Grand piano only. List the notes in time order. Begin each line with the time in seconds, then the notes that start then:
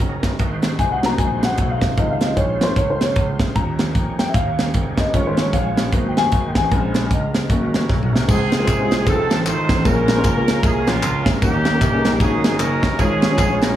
0.00 F#1
0.23 G1
0.40 G#1
0.79 C2
1.18 A#1
1.58 B1
1.82 C2
1.97 C#2
2.37 A#1
2.61 G#1
2.76 C#2
3.16 C#2
3.39 D2
3.56 D#2
3.95 F2
4.34 D#2
4.74 F#1
4.97 G1
5.14 G#1
5.53 A#1
5.92 G#1
6.32 G#1
6.55 A1
6.71 A#1
7.11 C#2
7.50 G#1
7.89 B1
8.13 C2
8.29 C#2
8.67 C2
9.07 F1
9.30 A1
9.46 G#1
9.69 A1
9.85 A#1
10.24 C#2
10.63 C2
10.87 A#1
11.02 C#2
11.26 D2
11.42 D#2
11.81 C2
12.05 A#1
12.20 G#1
12.59 F#1
12.83 G1
12.99 G#1
13.38 A#1